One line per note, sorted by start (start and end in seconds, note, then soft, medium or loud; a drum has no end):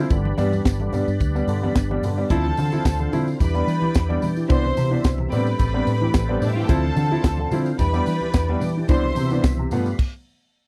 0.00 0.10 E4 medium
0.10 0.32 G1 loud
0.10 0.24 G2 medium
0.10 0.24 D3 medium
0.10 2.28 G3 medium
0.10 2.28 D4 medium
0.10 2.28 B4 medium
0.10 kick loud
0.10 closed hi-hat medium
0.10 tambourine soft
0.10 muted conga soft
0.25 muted conga soft
0.25 high conga medium
0.37 0.59 G2 medium
0.37 0.52 G3 loud
0.37 0.51 B3 medium
0.37 0.51 D4 loud
0.37 open hi-hat medium
0.37 tambourine medium
0.37 high conga medium
0.52 0.58 B3 soft
0.52 0.58 D4 soft
0.52 tambourine soft
0.52 high conga medium
0.65 0.86 G1 loud
0.65 0.72 B3 soft
0.65 0.71 D4 soft
0.65 kick loud
0.65 snare loud
0.65 closed hi-hat medium
0.65 tambourine medium
0.80 0.93 G2 medium
0.80 0.93 D3 soft
0.80 muted conga soft
0.80 high conga medium
0.92 1.04 G2 loud
0.92 1.07 G3 medium
0.92 1.07 B3 medium
0.92 1.07 D4 medium
0.92 open hi-hat medium
0.92 tambourine soft
0.92 low conga medium
1.07 1.17 G2 loud
1.07 tambourine soft
1.20 1.41 D2 medium
1.20 kick medium
1.20 closed hi-hat medium
1.20 tambourine medium
1.35 1.47 G3 medium
1.35 1.47 B3 medium
1.35 1.48 D4 medium
1.35 tambourine soft
1.47 1.68 G2 loud
1.47 1.62 G2 medium
1.47 1.62 D3 medium
1.47 open hi-hat medium
1.47 tambourine soft
1.63 1.75 G3 medium
1.63 1.75 B3 medium
1.63 1.75 D4 medium
1.63 high conga medium
1.75 1.96 G1 loud
1.75 kick loud
1.75 snare loud
1.75 closed hi-hat medium
1.75 tambourine medium
1.75 muted conga soft
1.91 2.03 G3 medium
1.91 2.03 B3 medium
1.91 2.03 D4 medium
1.91 muted conga soft
1.91 high conga medium
2.02 2.23 G2 medium
2.02 2.17 G2 medium
2.02 2.17 D3 medium
2.02 open hi-hat medium
2.02 tambourine medium
2.02 low conga medium
2.18 2.30 G3 medium
2.18 2.30 B3 medium
2.18 2.30 D4 medium
2.30 2.51 D2 loud
2.30 3.39 D3 medium
2.30 2.44 F3 medium
2.30 2.44 C4 medium
2.30 3.39 C4 medium
2.30 2.44 E4 loud
2.30 3.39 F4 medium
2.30 3.11 A4 medium
2.30 3.11 A5 medium
2.30 kick loud
2.30 closed hi-hat medium
2.30 tambourine soft
2.30 muted conga soft
2.46 muted conga soft
2.46 high conga medium
2.57 2.72 D3 medium
2.57 2.79 D3 medium
2.57 open hi-hat medium
2.57 tambourine medium
2.57 high conga medium
2.72 2.85 F3 medium
2.72 2.84 C4 medium
2.72 2.84 E4 medium
2.72 tambourine soft
2.72 high conga medium
2.85 3.06 D2 loud
2.85 kick loud
2.85 snare loud
2.85 closed hi-hat medium
2.85 tambourine medium
2.99 3.12 D3 medium
2.99 muted conga soft
2.99 high conga medium
3.12 3.34 D3 medium
3.12 3.26 F3 medium
3.12 3.26 C4 medium
3.12 3.27 E4 medium
3.12 open hi-hat medium
3.12 tambourine medium
3.12 low conga medium
3.28 tambourine soft
3.40 3.61 E2 loud
3.40 4.49 E3 medium
3.40 4.49 D4 medium
3.40 4.49 G4 medium
3.40 4.21 B4 medium
3.40 4.21 B5 loud
3.40 kick medium
3.40 closed hi-hat medium
3.40 tambourine medium
3.40 muted conga soft
3.40 low conga medium
3.54 3.67 G3 medium
3.54 3.67 B3 medium
3.54 3.67 D4 medium
3.54 tambourine soft
3.67 3.88 E3 medium
3.67 open hi-hat medium
3.67 tambourine soft
3.82 3.94 E3 medium
3.82 high conga medium
3.94 4.16 E2 loud
3.94 kick loud
3.94 snare loud
3.94 closed hi-hat medium
3.94 tambourine loud
4.09 4.21 G3 medium
4.09 4.22 B3 medium
4.09 4.22 D4 medium
4.09 muted conga soft
4.09 high conga medium
4.22 4.43 E3 loud
4.22 open hi-hat medium
4.22 tambourine soft
4.22 low conga medium
4.36 4.48 E3 medium
4.36 tambourine soft
4.48 4.71 C2 loud
4.48 5.31 B2 medium
4.48 5.31 C3 medium
4.48 4.63 E3 medium
4.48 4.63 B3 medium
4.48 4.64 D4 loud
4.48 5.30 E4 medium
4.48 5.04 C5 loud
4.48 5.03 C6 loud
4.48 kick loud
4.48 closed hi-hat medium
4.48 tambourine soft
4.48 muted conga soft
4.64 muted conga soft
4.64 high conga medium
4.77 4.91 C3 medium
4.77 4.98 C3 medium
4.77 open hi-hat medium
4.77 tambourine medium
4.77 high conga medium
4.91 5.04 E3 medium
4.91 5.04 B3 medium
4.91 5.04 D4 medium
4.91 high conga medium
5.04 5.25 C2 loud
5.04 5.11 B3 soft
5.04 5.11 D4 soft
5.04 kick loud
5.04 snare loud
5.04 closed hi-hat medium
5.04 tambourine medium
5.04 muted conga soft
5.18 5.32 C3 medium
5.18 muted conga soft
5.18 high conga medium
5.30 5.53 A2 loud
5.30 5.46 G3 medium
5.30 6.67 A3 medium
5.30 5.46 B3 medium
5.30 6.67 C4 medium
5.30 5.46 C4 medium
5.30 5.46 D4 medium
5.30 6.67 G4 medium
5.30 6.67 B4 medium
5.30 6.35 B4 medium
5.30 6.67 D5 medium
5.30 6.34 B5 medium
5.30 open hi-hat medium
5.30 tambourine soft
5.30 low conga medium
5.47 tambourine soft
5.59 5.80 A1 medium
5.59 kick medium
5.59 closed hi-hat medium
5.59 tambourine medium
5.59 muted conga soft
5.59 low conga medium
5.74 5.86 G3 medium
5.74 5.87 B3 medium
5.74 5.86 C4 medium
5.74 5.87 D4 medium
5.74 muted conga soft
5.87 6.08 A2 loud
5.87 open hi-hat medium
5.87 tambourine soft
6.01 6.14 A2 medium
6.01 6.14 E3 medium
6.01 high conga medium
6.14 6.36 A1 medium
6.14 kick loud
6.14 snare loud
6.14 closed hi-hat medium
6.14 tambourine medium
6.29 6.41 G3 medium
6.29 6.41 B3 medium
6.29 6.41 C4 medium
6.29 6.42 D4 medium
6.29 high conga medium
6.41 6.62 A2 loud
6.41 6.49 D4 soft
6.41 6.49 D5 medium
6.41 open hi-hat medium
6.41 tambourine medium
6.41 low conga medium
6.48 6.56 E4 medium
6.48 6.56 E5 medium
6.55 6.69 A2 medium
6.55 6.68 E3 medium
6.55 6.62 F4 medium
6.55 6.62 F5 medium
6.61 6.68 G4 medium
6.61 6.68 G5 medium
6.67 6.90 D2 loud
6.67 7.78 D3 medium
6.67 6.83 F3 medium
6.67 7.77 C4 medium
6.67 6.83 C4 medium
6.67 6.83 E4 loud
6.67 7.78 F4 medium
6.67 7.49 A4 medium
6.67 7.49 A5 loud
6.67 kick loud
6.67 closed hi-hat medium
6.67 tambourine soft
6.84 high conga medium
6.96 7.10 D3 medium
6.96 7.17 D3 medium
6.96 open hi-hat medium
6.96 tambourine medium
6.96 high conga medium
7.11 7.24 F3 medium
7.11 7.23 C4 medium
7.11 7.23 E4 medium
7.11 high conga medium
7.24 7.45 D2 loud
7.24 7.30 C4 soft
7.24 7.30 E4 soft
7.24 kick loud
7.24 snare loud
7.24 closed hi-hat medium
7.24 tambourine medium
7.24 muted conga soft
7.37 7.51 D3 medium
7.37 high conga medium
7.51 7.72 D3 loud
7.51 7.66 F3 medium
7.51 7.66 C4 medium
7.51 7.66 E4 medium
7.51 open hi-hat medium
7.51 tambourine medium
7.51 low conga medium
7.66 tambourine soft
7.79 8.00 E2 loud
7.79 8.88 E3 medium
7.79 8.88 D4 medium
7.79 8.88 G4 medium
7.79 8.60 B4 medium
7.79 8.60 B5 loud
7.79 kick loud
7.79 closed hi-hat medium
7.79 tambourine medium
7.79 muted conga soft
7.79 low conga medium
7.94 8.06 G3 medium
7.94 8.06 B3 medium
7.94 8.06 D4 medium
7.94 tambourine soft
7.94 muted conga soft
8.06 8.28 E3 loud
8.06 open hi-hat medium
8.06 tambourine soft
8.21 8.34 E3 medium
8.21 high conga medium
8.34 8.55 E2 loud
8.34 kick loud
8.34 snare loud
8.34 closed hi-hat medium
8.34 tambourine loud
8.34 muted conga soft
8.49 8.61 G3 medium
8.49 8.61 B3 medium
8.49 8.62 D4 medium
8.49 muted conga soft
8.49 high conga medium
8.61 8.83 E3 loud
8.61 open hi-hat medium
8.61 tambourine medium
8.61 low conga medium
8.77 8.88 E3 medium
8.88 9.10 C2 loud
8.88 9.70 B2 medium
8.88 9.70 C3 medium
8.88 9.03 E3 medium
8.88 9.04 B3 medium
8.88 9.04 D4 loud
8.88 9.71 E4 medium
8.88 9.43 C5 medium
8.88 9.43 C6 loud
8.88 kick loud
8.88 closed hi-hat medium
8.88 tambourine medium
8.88 muted conga soft
9.04 muted conga soft
9.04 high conga medium
9.15 9.37 C3 medium
9.15 9.31 C3 medium
9.15 open hi-hat medium
9.15 tambourine medium
9.15 high conga medium
9.30 9.44 E3 medium
9.30 9.44 B3 medium
9.30 9.43 D4 medium
9.30 tambourine soft
9.30 high conga medium
9.44 9.65 C2 loud
9.44 9.50 B3 soft
9.44 9.50 D4 soft
9.44 kick loud
9.44 snare loud
9.44 closed hi-hat medium
9.44 tambourine medium
9.57 9.71 C3 medium
9.57 muted conga soft
9.57 high conga medium
9.71 9.92 G2 loud
9.71 9.86 F3 medium
9.71 9.99 G3 medium
9.71 9.86 A3 medium
9.71 9.86 B3 loud
9.71 9.99 F4 medium
9.71 9.99 B4 medium
9.71 open hi-hat medium
9.71 tambourine medium
9.71 low conga medium
9.86 tambourine soft
9.99 kick loud
9.99 crash medium